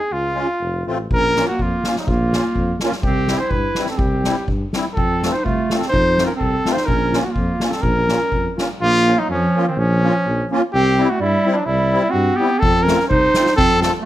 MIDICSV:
0, 0, Header, 1, 6, 480
1, 0, Start_track
1, 0, Key_signature, -5, "minor"
1, 0, Tempo, 497925
1, 116, Time_signature, 2, 2, 24, 8
1, 1077, Tempo, 483092
1, 5397, Tempo, 480384
1, 9717, Tempo, 474308
1, 14032, End_track
2, 0, Start_track
2, 0, Title_t, "Trumpet"
2, 0, Program_c, 0, 56
2, 0, Note_on_c, 0, 68, 91
2, 119, Note_on_c, 0, 65, 91
2, 133, Note_off_c, 0, 68, 0
2, 849, Note_off_c, 0, 65, 0
2, 1091, Note_on_c, 0, 70, 115
2, 1425, Note_off_c, 0, 70, 0
2, 1431, Note_on_c, 0, 66, 83
2, 1571, Note_on_c, 0, 65, 79
2, 1586, Note_off_c, 0, 66, 0
2, 1922, Note_off_c, 0, 65, 0
2, 1928, Note_on_c, 0, 63, 67
2, 2035, Note_on_c, 0, 65, 87
2, 2050, Note_off_c, 0, 63, 0
2, 2759, Note_off_c, 0, 65, 0
2, 2977, Note_on_c, 0, 67, 103
2, 3337, Note_on_c, 0, 72, 84
2, 3352, Note_off_c, 0, 67, 0
2, 3445, Note_on_c, 0, 71, 101
2, 3460, Note_off_c, 0, 72, 0
2, 3816, Note_off_c, 0, 71, 0
2, 3827, Note_on_c, 0, 69, 59
2, 3918, Note_on_c, 0, 67, 91
2, 3932, Note_off_c, 0, 69, 0
2, 4413, Note_off_c, 0, 67, 0
2, 4872, Note_on_c, 0, 69, 98
2, 5254, Note_on_c, 0, 72, 83
2, 5269, Note_off_c, 0, 69, 0
2, 5377, Note_on_c, 0, 65, 80
2, 5392, Note_off_c, 0, 72, 0
2, 5708, Note_off_c, 0, 65, 0
2, 5714, Note_on_c, 0, 69, 70
2, 5810, Note_off_c, 0, 69, 0
2, 5816, Note_on_c, 0, 72, 109
2, 6177, Note_off_c, 0, 72, 0
2, 6191, Note_on_c, 0, 70, 76
2, 6252, Note_off_c, 0, 70, 0
2, 6308, Note_on_c, 0, 69, 93
2, 6655, Note_on_c, 0, 72, 86
2, 6670, Note_off_c, 0, 69, 0
2, 6783, Note_on_c, 0, 70, 104
2, 6798, Note_off_c, 0, 72, 0
2, 7137, Note_off_c, 0, 70, 0
2, 7143, Note_on_c, 0, 66, 72
2, 7248, Note_on_c, 0, 65, 77
2, 7263, Note_off_c, 0, 66, 0
2, 7614, Note_off_c, 0, 65, 0
2, 7620, Note_on_c, 0, 69, 81
2, 7748, Note_on_c, 0, 70, 102
2, 7763, Note_off_c, 0, 69, 0
2, 8500, Note_off_c, 0, 70, 0
2, 8742, Note_on_c, 0, 65, 125
2, 9115, Note_on_c, 0, 63, 87
2, 9130, Note_off_c, 0, 65, 0
2, 9224, Note_off_c, 0, 63, 0
2, 9230, Note_on_c, 0, 61, 86
2, 9572, Note_off_c, 0, 61, 0
2, 9602, Note_on_c, 0, 60, 81
2, 9718, Note_on_c, 0, 61, 106
2, 9733, Note_off_c, 0, 60, 0
2, 10446, Note_off_c, 0, 61, 0
2, 10670, Note_on_c, 0, 67, 108
2, 11043, Note_on_c, 0, 66, 78
2, 11058, Note_off_c, 0, 67, 0
2, 11154, Note_off_c, 0, 66, 0
2, 11160, Note_on_c, 0, 64, 93
2, 11484, Note_on_c, 0, 62, 80
2, 11500, Note_off_c, 0, 64, 0
2, 11604, Note_on_c, 0, 64, 100
2, 11620, Note_off_c, 0, 62, 0
2, 12064, Note_on_c, 0, 66, 94
2, 12079, Note_off_c, 0, 64, 0
2, 12325, Note_on_c, 0, 67, 96
2, 12340, Note_off_c, 0, 66, 0
2, 12555, Note_on_c, 0, 69, 107
2, 12570, Note_off_c, 0, 67, 0
2, 12794, Note_on_c, 0, 70, 97
2, 12809, Note_off_c, 0, 69, 0
2, 13046, Note_off_c, 0, 70, 0
2, 13052, Note_on_c, 0, 72, 101
2, 13514, Note_off_c, 0, 72, 0
2, 13534, Note_on_c, 0, 69, 122
2, 13776, Note_off_c, 0, 69, 0
2, 13794, Note_on_c, 0, 69, 98
2, 13899, Note_off_c, 0, 69, 0
2, 14032, End_track
3, 0, Start_track
3, 0, Title_t, "Accordion"
3, 0, Program_c, 1, 21
3, 329, Note_on_c, 1, 56, 66
3, 341, Note_on_c, 1, 61, 55
3, 345, Note_on_c, 1, 65, 68
3, 451, Note_off_c, 1, 56, 0
3, 457, Note_off_c, 1, 61, 0
3, 459, Note_off_c, 1, 65, 0
3, 830, Note_on_c, 1, 57, 72
3, 834, Note_on_c, 1, 60, 64
3, 838, Note_on_c, 1, 65, 74
3, 942, Note_off_c, 1, 57, 0
3, 944, Note_off_c, 1, 60, 0
3, 947, Note_off_c, 1, 65, 0
3, 1323, Note_on_c, 1, 61, 50
3, 1324, Note_on_c, 1, 58, 61
3, 1331, Note_on_c, 1, 65, 72
3, 1430, Note_off_c, 1, 58, 0
3, 1430, Note_off_c, 1, 61, 0
3, 1433, Note_off_c, 1, 65, 0
3, 1808, Note_on_c, 1, 58, 53
3, 1810, Note_on_c, 1, 61, 45
3, 1815, Note_on_c, 1, 65, 57
3, 1912, Note_off_c, 1, 58, 0
3, 1913, Note_off_c, 1, 61, 0
3, 1916, Note_off_c, 1, 65, 0
3, 2285, Note_on_c, 1, 58, 60
3, 2291, Note_on_c, 1, 61, 60
3, 2302, Note_on_c, 1, 65, 60
3, 2389, Note_off_c, 1, 58, 0
3, 2392, Note_off_c, 1, 61, 0
3, 2398, Note_off_c, 1, 65, 0
3, 2773, Note_on_c, 1, 58, 70
3, 2778, Note_on_c, 1, 61, 67
3, 2787, Note_on_c, 1, 65, 87
3, 2871, Note_off_c, 1, 58, 0
3, 2873, Note_off_c, 1, 61, 0
3, 2878, Note_off_c, 1, 65, 0
3, 3226, Note_on_c, 1, 55, 57
3, 3237, Note_on_c, 1, 60, 49
3, 3241, Note_on_c, 1, 64, 66
3, 3334, Note_off_c, 1, 55, 0
3, 3340, Note_off_c, 1, 60, 0
3, 3342, Note_off_c, 1, 64, 0
3, 3710, Note_on_c, 1, 55, 60
3, 3712, Note_on_c, 1, 60, 44
3, 3721, Note_on_c, 1, 64, 63
3, 3814, Note_off_c, 1, 55, 0
3, 3815, Note_off_c, 1, 60, 0
3, 3820, Note_off_c, 1, 64, 0
3, 4182, Note_on_c, 1, 55, 60
3, 4192, Note_on_c, 1, 60, 54
3, 4197, Note_on_c, 1, 64, 73
3, 4292, Note_off_c, 1, 55, 0
3, 4297, Note_off_c, 1, 60, 0
3, 4299, Note_off_c, 1, 64, 0
3, 4680, Note_on_c, 1, 55, 68
3, 4681, Note_on_c, 1, 60, 57
3, 4692, Note_on_c, 1, 64, 63
3, 4785, Note_off_c, 1, 55, 0
3, 4785, Note_off_c, 1, 60, 0
3, 4791, Note_off_c, 1, 64, 0
3, 5162, Note_on_c, 1, 57, 56
3, 5168, Note_on_c, 1, 60, 52
3, 5173, Note_on_c, 1, 65, 59
3, 5268, Note_off_c, 1, 57, 0
3, 5271, Note_off_c, 1, 60, 0
3, 5274, Note_off_c, 1, 65, 0
3, 5643, Note_on_c, 1, 57, 58
3, 5646, Note_on_c, 1, 60, 42
3, 5650, Note_on_c, 1, 65, 56
3, 5747, Note_off_c, 1, 57, 0
3, 5748, Note_off_c, 1, 60, 0
3, 5751, Note_off_c, 1, 65, 0
3, 6108, Note_on_c, 1, 57, 65
3, 6117, Note_on_c, 1, 60, 53
3, 6118, Note_on_c, 1, 65, 70
3, 6217, Note_off_c, 1, 57, 0
3, 6221, Note_off_c, 1, 60, 0
3, 6221, Note_off_c, 1, 65, 0
3, 6586, Note_on_c, 1, 60, 58
3, 6587, Note_on_c, 1, 57, 60
3, 6592, Note_on_c, 1, 65, 74
3, 6692, Note_off_c, 1, 57, 0
3, 6692, Note_off_c, 1, 60, 0
3, 6695, Note_off_c, 1, 65, 0
3, 7055, Note_on_c, 1, 58, 68
3, 7059, Note_on_c, 1, 61, 60
3, 7063, Note_on_c, 1, 65, 70
3, 7163, Note_off_c, 1, 58, 0
3, 7165, Note_off_c, 1, 61, 0
3, 7167, Note_off_c, 1, 65, 0
3, 7531, Note_on_c, 1, 58, 63
3, 7535, Note_on_c, 1, 61, 55
3, 7544, Note_on_c, 1, 65, 57
3, 7640, Note_off_c, 1, 58, 0
3, 7642, Note_off_c, 1, 61, 0
3, 7647, Note_off_c, 1, 65, 0
3, 8008, Note_on_c, 1, 58, 57
3, 8018, Note_on_c, 1, 61, 54
3, 8023, Note_on_c, 1, 65, 58
3, 8121, Note_off_c, 1, 58, 0
3, 8126, Note_off_c, 1, 61, 0
3, 8128, Note_off_c, 1, 65, 0
3, 8494, Note_on_c, 1, 58, 65
3, 8502, Note_on_c, 1, 65, 64
3, 8504, Note_on_c, 1, 61, 54
3, 8610, Note_off_c, 1, 58, 0
3, 8614, Note_off_c, 1, 65, 0
3, 8615, Note_off_c, 1, 61, 0
3, 8990, Note_on_c, 1, 58, 72
3, 8998, Note_on_c, 1, 61, 60
3, 9005, Note_on_c, 1, 65, 69
3, 9102, Note_off_c, 1, 58, 0
3, 9106, Note_off_c, 1, 61, 0
3, 9109, Note_off_c, 1, 65, 0
3, 9480, Note_on_c, 1, 58, 66
3, 9484, Note_on_c, 1, 61, 57
3, 9487, Note_on_c, 1, 65, 75
3, 9587, Note_off_c, 1, 58, 0
3, 9589, Note_off_c, 1, 61, 0
3, 9590, Note_off_c, 1, 65, 0
3, 9952, Note_on_c, 1, 58, 71
3, 9961, Note_on_c, 1, 61, 66
3, 9971, Note_on_c, 1, 65, 76
3, 10063, Note_off_c, 1, 58, 0
3, 10068, Note_off_c, 1, 61, 0
3, 10073, Note_off_c, 1, 65, 0
3, 10448, Note_on_c, 1, 58, 90
3, 10453, Note_on_c, 1, 61, 67
3, 10463, Note_on_c, 1, 65, 86
3, 10550, Note_off_c, 1, 58, 0
3, 10553, Note_off_c, 1, 61, 0
3, 10558, Note_off_c, 1, 65, 0
3, 10921, Note_on_c, 1, 55, 61
3, 10925, Note_on_c, 1, 60, 60
3, 10934, Note_on_c, 1, 64, 85
3, 11024, Note_off_c, 1, 55, 0
3, 11026, Note_off_c, 1, 60, 0
3, 11030, Note_off_c, 1, 64, 0
3, 11400, Note_on_c, 1, 55, 60
3, 11407, Note_on_c, 1, 60, 55
3, 11410, Note_on_c, 1, 64, 80
3, 11502, Note_off_c, 1, 55, 0
3, 11505, Note_off_c, 1, 60, 0
3, 11506, Note_off_c, 1, 64, 0
3, 11877, Note_on_c, 1, 55, 68
3, 11878, Note_on_c, 1, 60, 61
3, 11884, Note_on_c, 1, 64, 77
3, 11979, Note_off_c, 1, 55, 0
3, 11980, Note_off_c, 1, 60, 0
3, 11983, Note_off_c, 1, 64, 0
3, 12349, Note_on_c, 1, 55, 66
3, 12362, Note_on_c, 1, 60, 60
3, 12367, Note_on_c, 1, 64, 65
3, 12458, Note_off_c, 1, 55, 0
3, 12464, Note_off_c, 1, 60, 0
3, 12467, Note_off_c, 1, 64, 0
3, 12835, Note_on_c, 1, 57, 57
3, 12848, Note_on_c, 1, 60, 66
3, 12851, Note_on_c, 1, 65, 73
3, 12947, Note_off_c, 1, 57, 0
3, 12953, Note_off_c, 1, 60, 0
3, 12954, Note_off_c, 1, 65, 0
3, 13318, Note_on_c, 1, 57, 58
3, 13323, Note_on_c, 1, 60, 54
3, 13333, Note_on_c, 1, 65, 63
3, 13429, Note_off_c, 1, 57, 0
3, 13432, Note_off_c, 1, 60, 0
3, 13437, Note_off_c, 1, 65, 0
3, 13796, Note_on_c, 1, 57, 60
3, 13803, Note_on_c, 1, 60, 66
3, 13808, Note_on_c, 1, 65, 68
3, 13905, Note_off_c, 1, 57, 0
3, 13909, Note_off_c, 1, 60, 0
3, 13911, Note_off_c, 1, 65, 0
3, 14032, End_track
4, 0, Start_track
4, 0, Title_t, "Clarinet"
4, 0, Program_c, 2, 71
4, 1115, Note_on_c, 2, 61, 81
4, 1438, Note_off_c, 2, 61, 0
4, 1460, Note_on_c, 2, 58, 67
4, 1588, Note_off_c, 2, 58, 0
4, 1588, Note_on_c, 2, 58, 85
4, 1939, Note_off_c, 2, 58, 0
4, 1949, Note_on_c, 2, 54, 63
4, 2065, Note_on_c, 2, 58, 81
4, 2080, Note_off_c, 2, 54, 0
4, 2774, Note_off_c, 2, 58, 0
4, 3013, Note_on_c, 2, 60, 89
4, 3364, Note_on_c, 2, 64, 76
4, 3379, Note_off_c, 2, 60, 0
4, 3479, Note_off_c, 2, 64, 0
4, 3479, Note_on_c, 2, 64, 90
4, 3833, Note_off_c, 2, 64, 0
4, 3849, Note_on_c, 2, 60, 64
4, 3964, Note_off_c, 2, 60, 0
4, 3964, Note_on_c, 2, 60, 73
4, 4436, Note_off_c, 2, 60, 0
4, 4905, Note_on_c, 2, 60, 85
4, 5274, Note_on_c, 2, 63, 64
4, 5289, Note_off_c, 2, 60, 0
4, 5374, Note_on_c, 2, 57, 84
4, 5389, Note_off_c, 2, 63, 0
4, 5700, Note_off_c, 2, 57, 0
4, 5706, Note_on_c, 2, 60, 72
4, 5832, Note_off_c, 2, 60, 0
4, 5838, Note_on_c, 2, 63, 81
4, 6189, Note_off_c, 2, 63, 0
4, 6197, Note_on_c, 2, 61, 64
4, 6256, Note_off_c, 2, 61, 0
4, 6289, Note_on_c, 2, 60, 82
4, 6668, Note_on_c, 2, 63, 79
4, 6683, Note_off_c, 2, 60, 0
4, 6810, Note_on_c, 2, 61, 98
4, 6825, Note_off_c, 2, 63, 0
4, 7155, Note_off_c, 2, 61, 0
4, 7161, Note_on_c, 2, 58, 60
4, 7278, Note_off_c, 2, 58, 0
4, 7278, Note_on_c, 2, 58, 80
4, 7618, Note_off_c, 2, 58, 0
4, 7624, Note_on_c, 2, 60, 56
4, 7762, Note_on_c, 2, 61, 68
4, 7777, Note_off_c, 2, 60, 0
4, 8507, Note_off_c, 2, 61, 0
4, 8759, Note_on_c, 2, 58, 99
4, 9124, Note_on_c, 2, 54, 69
4, 9139, Note_off_c, 2, 58, 0
4, 9239, Note_off_c, 2, 54, 0
4, 9261, Note_on_c, 2, 53, 90
4, 9589, Note_off_c, 2, 53, 0
4, 9608, Note_on_c, 2, 51, 67
4, 9715, Note_on_c, 2, 53, 75
4, 9730, Note_off_c, 2, 51, 0
4, 10445, Note_off_c, 2, 53, 0
4, 10688, Note_on_c, 2, 60, 103
4, 11047, Note_on_c, 2, 57, 64
4, 11062, Note_off_c, 2, 60, 0
4, 11137, Note_off_c, 2, 57, 0
4, 11143, Note_on_c, 2, 55, 94
4, 11536, Note_on_c, 2, 54, 57
4, 11551, Note_off_c, 2, 55, 0
4, 11631, Note_on_c, 2, 55, 95
4, 11647, Note_off_c, 2, 54, 0
4, 12050, Note_on_c, 2, 60, 88
4, 12066, Note_off_c, 2, 55, 0
4, 12314, Note_on_c, 2, 59, 87
4, 12329, Note_off_c, 2, 60, 0
4, 12550, Note_on_c, 2, 60, 99
4, 12566, Note_off_c, 2, 59, 0
4, 12795, Note_on_c, 2, 61, 76
4, 12810, Note_off_c, 2, 60, 0
4, 13056, Note_off_c, 2, 61, 0
4, 13065, Note_on_c, 2, 63, 100
4, 13521, Note_off_c, 2, 63, 0
4, 13544, Note_on_c, 2, 60, 111
4, 13762, Note_off_c, 2, 60, 0
4, 13768, Note_on_c, 2, 60, 73
4, 13880, Note_off_c, 2, 60, 0
4, 13976, Note_on_c, 2, 57, 90
4, 14032, Note_off_c, 2, 57, 0
4, 14032, End_track
5, 0, Start_track
5, 0, Title_t, "Tuba"
5, 0, Program_c, 3, 58
5, 116, Note_on_c, 3, 37, 64
5, 429, Note_off_c, 3, 37, 0
5, 584, Note_on_c, 3, 29, 71
5, 815, Note_off_c, 3, 29, 0
5, 841, Note_on_c, 3, 33, 64
5, 1050, Note_off_c, 3, 33, 0
5, 1064, Note_on_c, 3, 34, 80
5, 1382, Note_off_c, 3, 34, 0
5, 1545, Note_on_c, 3, 41, 68
5, 1712, Note_off_c, 3, 41, 0
5, 2027, Note_on_c, 3, 34, 83
5, 2341, Note_off_c, 3, 34, 0
5, 2505, Note_on_c, 3, 41, 78
5, 2668, Note_off_c, 3, 41, 0
5, 2975, Note_on_c, 3, 36, 88
5, 3288, Note_off_c, 3, 36, 0
5, 3447, Note_on_c, 3, 43, 60
5, 3612, Note_off_c, 3, 43, 0
5, 3924, Note_on_c, 3, 36, 79
5, 4244, Note_off_c, 3, 36, 0
5, 4412, Note_on_c, 3, 43, 62
5, 4580, Note_off_c, 3, 43, 0
5, 4898, Note_on_c, 3, 41, 67
5, 5217, Note_off_c, 3, 41, 0
5, 5383, Note_on_c, 3, 36, 62
5, 5548, Note_off_c, 3, 36, 0
5, 5863, Note_on_c, 3, 41, 90
5, 6175, Note_off_c, 3, 41, 0
5, 6340, Note_on_c, 3, 36, 79
5, 6501, Note_off_c, 3, 36, 0
5, 6804, Note_on_c, 3, 34, 78
5, 7118, Note_off_c, 3, 34, 0
5, 7283, Note_on_c, 3, 41, 83
5, 7447, Note_off_c, 3, 41, 0
5, 7757, Note_on_c, 3, 34, 88
5, 8078, Note_off_c, 3, 34, 0
5, 8242, Note_on_c, 3, 41, 60
5, 8412, Note_off_c, 3, 41, 0
5, 8741, Note_on_c, 3, 34, 82
5, 9060, Note_off_c, 3, 34, 0
5, 9216, Note_on_c, 3, 41, 74
5, 9385, Note_off_c, 3, 41, 0
5, 9696, Note_on_c, 3, 34, 94
5, 10015, Note_off_c, 3, 34, 0
5, 10198, Note_on_c, 3, 34, 82
5, 10359, Note_off_c, 3, 34, 0
5, 10679, Note_on_c, 3, 36, 99
5, 10986, Note_off_c, 3, 36, 0
5, 11143, Note_on_c, 3, 43, 71
5, 11305, Note_off_c, 3, 43, 0
5, 11620, Note_on_c, 3, 36, 81
5, 11933, Note_off_c, 3, 36, 0
5, 12090, Note_on_c, 3, 43, 80
5, 12257, Note_off_c, 3, 43, 0
5, 12583, Note_on_c, 3, 41, 76
5, 12904, Note_off_c, 3, 41, 0
5, 13071, Note_on_c, 3, 36, 73
5, 13237, Note_off_c, 3, 36, 0
5, 13557, Note_on_c, 3, 41, 88
5, 13867, Note_off_c, 3, 41, 0
5, 14032, End_track
6, 0, Start_track
6, 0, Title_t, "Drums"
6, 1067, Note_on_c, 9, 36, 67
6, 1166, Note_off_c, 9, 36, 0
6, 1316, Note_on_c, 9, 38, 67
6, 1415, Note_off_c, 9, 38, 0
6, 1550, Note_on_c, 9, 36, 50
6, 1649, Note_off_c, 9, 36, 0
6, 1792, Note_on_c, 9, 38, 67
6, 1891, Note_off_c, 9, 38, 0
6, 1914, Note_on_c, 9, 38, 43
6, 2013, Note_off_c, 9, 38, 0
6, 2031, Note_on_c, 9, 36, 66
6, 2131, Note_off_c, 9, 36, 0
6, 2279, Note_on_c, 9, 38, 70
6, 2378, Note_off_c, 9, 38, 0
6, 2506, Note_on_c, 9, 36, 48
6, 2606, Note_off_c, 9, 36, 0
6, 2744, Note_on_c, 9, 38, 74
6, 2844, Note_off_c, 9, 38, 0
6, 2867, Note_on_c, 9, 38, 50
6, 2967, Note_off_c, 9, 38, 0
6, 2980, Note_on_c, 9, 36, 73
6, 3079, Note_off_c, 9, 36, 0
6, 3220, Note_on_c, 9, 38, 69
6, 3320, Note_off_c, 9, 38, 0
6, 3451, Note_on_c, 9, 36, 51
6, 3551, Note_off_c, 9, 36, 0
6, 3690, Note_on_c, 9, 38, 65
6, 3790, Note_off_c, 9, 38, 0
6, 3805, Note_on_c, 9, 38, 46
6, 3905, Note_off_c, 9, 38, 0
6, 3929, Note_on_c, 9, 36, 76
6, 4029, Note_off_c, 9, 36, 0
6, 4181, Note_on_c, 9, 38, 65
6, 4280, Note_off_c, 9, 38, 0
6, 4417, Note_on_c, 9, 36, 55
6, 4517, Note_off_c, 9, 36, 0
6, 4665, Note_on_c, 9, 38, 77
6, 4764, Note_off_c, 9, 38, 0
6, 4907, Note_on_c, 9, 36, 67
6, 5006, Note_off_c, 9, 36, 0
6, 5158, Note_on_c, 9, 38, 73
6, 5258, Note_off_c, 9, 38, 0
6, 5390, Note_on_c, 9, 36, 50
6, 5490, Note_off_c, 9, 36, 0
6, 5630, Note_on_c, 9, 38, 71
6, 5730, Note_off_c, 9, 38, 0
6, 5750, Note_on_c, 9, 38, 44
6, 5850, Note_off_c, 9, 38, 0
6, 5868, Note_on_c, 9, 36, 70
6, 5968, Note_off_c, 9, 36, 0
6, 6112, Note_on_c, 9, 38, 68
6, 6212, Note_off_c, 9, 38, 0
6, 6339, Note_on_c, 9, 36, 45
6, 6439, Note_off_c, 9, 36, 0
6, 6584, Note_on_c, 9, 38, 70
6, 6683, Note_off_c, 9, 38, 0
6, 6700, Note_on_c, 9, 38, 50
6, 6800, Note_off_c, 9, 38, 0
6, 6813, Note_on_c, 9, 36, 68
6, 6913, Note_off_c, 9, 36, 0
6, 7061, Note_on_c, 9, 38, 63
6, 7160, Note_off_c, 9, 38, 0
6, 7287, Note_on_c, 9, 36, 55
6, 7387, Note_off_c, 9, 36, 0
6, 7530, Note_on_c, 9, 38, 71
6, 7630, Note_off_c, 9, 38, 0
6, 7648, Note_on_c, 9, 38, 50
6, 7748, Note_off_c, 9, 38, 0
6, 7762, Note_on_c, 9, 36, 63
6, 7862, Note_off_c, 9, 36, 0
6, 8013, Note_on_c, 9, 38, 60
6, 8113, Note_off_c, 9, 38, 0
6, 8249, Note_on_c, 9, 36, 49
6, 8349, Note_off_c, 9, 36, 0
6, 8510, Note_on_c, 9, 38, 63
6, 8610, Note_off_c, 9, 38, 0
6, 12589, Note_on_c, 9, 36, 78
6, 12690, Note_off_c, 9, 36, 0
6, 12844, Note_on_c, 9, 38, 68
6, 12844, Note_on_c, 9, 44, 39
6, 12945, Note_off_c, 9, 38, 0
6, 12945, Note_off_c, 9, 44, 0
6, 12962, Note_on_c, 9, 38, 27
6, 13064, Note_off_c, 9, 38, 0
6, 13076, Note_on_c, 9, 36, 60
6, 13177, Note_off_c, 9, 36, 0
6, 13313, Note_on_c, 9, 38, 83
6, 13313, Note_on_c, 9, 44, 47
6, 13414, Note_off_c, 9, 38, 0
6, 13414, Note_off_c, 9, 44, 0
6, 13434, Note_on_c, 9, 38, 55
6, 13535, Note_off_c, 9, 38, 0
6, 13558, Note_on_c, 9, 36, 83
6, 13659, Note_off_c, 9, 36, 0
6, 13801, Note_on_c, 9, 38, 78
6, 13801, Note_on_c, 9, 44, 41
6, 13902, Note_off_c, 9, 38, 0
6, 13902, Note_off_c, 9, 44, 0
6, 14032, End_track
0, 0, End_of_file